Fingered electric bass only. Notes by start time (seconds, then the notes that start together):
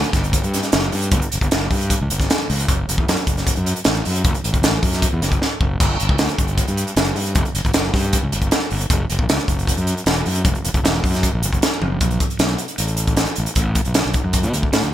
0.14 G1
0.44 G2
0.73 F#1
0.93 G2
1.12 G1
1.33 F#1
1.41 G1
1.53 F#1
1.71 G2
2.01 C#2
2.10 G1
2.50 C#2
2.69 F#1
2.89 F#1
2.98 E2
3.09 F#2
3.27 F#1
3.57 F#2
3.86 A1
4.06 F#2
4.24 F#1
4.44 A1
4.53 F#1
4.63 A1
4.82 F#2
5.13 E2
5.22 F#1
5.61 F#1
5.80 G1
6.01 G1
6.09 C#2
6.21 D2
6.39 G1
6.68 G2
6.96 F#1
7.16 G2
7.35 G1
7.54 F#1
7.65 G1
7.75 F#1
7.94 G2
8.23 C#2
8.33 G1
8.72 G1
8.90 F#1
9.10 F#1
9.19 A#1
9.30 C#2
9.48 F#1
9.78 F#2
10.06 E1
10.26 F#2
10.45 F#1
10.64 E1
10.74 F#1
10.83 E1
11.03 F#2
11.34 A#1
11.42 F#1
11.82 F#1
12.01 B1
12.39 B1
12.78 A1
13.38 A1
13.56 A1
13.86 B1
14.05 B1
14.24 F#2
14.43 B2
14.53 D2
14.73 A2
14.83 D2